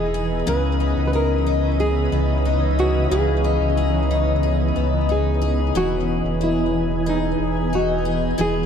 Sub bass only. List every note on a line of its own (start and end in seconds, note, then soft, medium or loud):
0.00 0.43 E1 medium
0.48 0.95 C#2 loud
0.97 2.08 C#2 medium
2.12 3.07 C#2 loud
3.12 3.58 C#2 loud
3.60 4.72 C#2 medium
4.77 5.71 C#2 medium
5.75 6.22 E1 loud
6.24 7.36 E1 medium
7.39 8.34 E1 medium
8.39 8.66 E1 loud